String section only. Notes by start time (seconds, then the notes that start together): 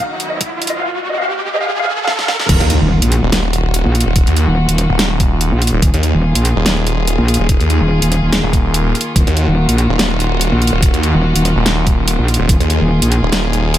Already playing: D#2 D#3 F#3 F#4
2.49 D#3 A#3 F4 F#4
5.82 G#4
9.16 F#4
12.49 G#4